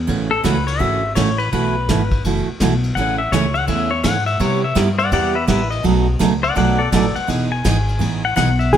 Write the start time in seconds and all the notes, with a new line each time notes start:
0.07 A1 C#3 E3 A3 C#4 F#4, kick, ride
0.31 A4
0.44 C#2 C#3 E3 A3 C#4 F#4 B4, kick, snare, hi-hat pedal, ride
0.67 C#5, ride
0.79 G#1 C#3 E3 A3 C#4 F#4 E5, kick
1.15 A1 C#3 E3 A3 C#4 F#4 C#5, kick, snare, hi-hat pedal, ride
1.38 B4, ride
1.52 B1 B2 E3 A3 E4 F#4 B4, kick, ride
1.89 G#1 B2 E3 A3 E4 F#4, kick, snare, hi-hat pedal, ride
2.11 kick, ride
2.24 F#1 B2 E3 A3 E4 F#4, kick, ride
2.48 muted upright bass stroke
2.60 B1 B2 E3 A3 E4 F#4, kick, snare, hi-hat pedal, ride
2.84 ride
2.95 A1 C#3 E3 A3 C#4 G#4 F#5, kick, ride
3.18 E5
3.32 C#2 C#3 E3 A3 C#4 G#4 C#5, kick, snare, hi-hat pedal, ride
3.54 F#5, ride
3.67 E2 C#3 E3 A3 C#4 G#4 E5, kick, ride
3.91 C#5
4.03 G#2 C#3 E3 A3 C#4 G#4 F#5, kick, snare, hi-hat pedal, ride
4.26 E5, ride
4.40 C3 G3 B3 E4 G4 C#5, kick, ride
4.64 E5
4.75 G2 C3 G3 B3 E4 G4, kick, snare, hi-hat pedal, ride
4.99 D5 F#5, ride
5.12 E2 C3 G3 B3 E4 G4 D5 F#5, kick, ride
5.35 B4 E5
5.47 A1 C3 G3 B3 E4 G4 B4 E5, kick, snare, hi-hat pedal, ride
5.71 D#5, ride
5.83 B1 B2 F#3 A3 D#4 F#4, kick, ride
6.19 C#2 B2 F#3 A3 D#4 F#4, kick, snare, hi-hat pedal, ride
6.43 D5 F#5, ride
6.55 B1 B2 F#3 A3 D#4 F#4 D5 F#5, kick, ride
6.78 A4 D5
6.92 A1 B2 F#3 A3 D#4 F#4 A4 D5, kick, snare, hi-hat pedal, ride
7.16 F#5, muted upright bass stroke, ride
7.27 E1 E3 B3 D#4 G#4, kick, ride
7.52 G#5
7.64 G#1 E3 B3 D#4 G#4, kick, snare, hi-hat pedal, ride
7.88 ride
7.99 A1 E3 B3 D#4 G#4, kick, ride
8.25 F#5
8.36 B1 E3 B3 D#4 G#4 F#5, kick, snare, hi-hat pedal, ride
8.59 E5, ride
8.73 E2 E3 B3 D#4 G#4, brush sweep, kick, snare